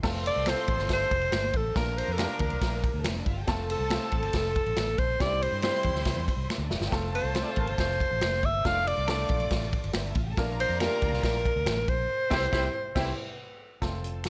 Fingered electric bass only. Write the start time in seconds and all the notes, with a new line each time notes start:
0.03 F1
0.36 C2
0.68 A1
0.79 G1
1.11 F1
1.32 G1
1.54 A1
1.76 A#1
2.08 F2
2.40 D2
2.52 C2
2.62 A#1
2.94 D2
3.05 F1
3.26 G1
3.48 F1
3.79 C2
4.12 A1
4.23 G1
4.34 F1
4.66 A1
4.77 A1
4.98 A#1
5.20 C2
5.52 G2
5.85 E2
5.95 D2
6.06 C2
6.16 E2
6.37 C2
6.58 D2
6.69 F1
6.80 G1
6.92 F1
7.23 C2
7.57 A1
7.68 G1
7.78 F1
8.11 A1
8.23 F1
8.44 G1
8.65 F1
8.98 C2
9.30 A#1
9.51 A1
9.84 G1
9.94 G1
10.16 A1
10.38 A#1
10.69 F2
11.03 D2
11.13 C2
11.23 A#1
11.56 D2
11.66 A1
11.88 A#1
12.31 C2
12.52 C2
12.96 C2
13.82 F1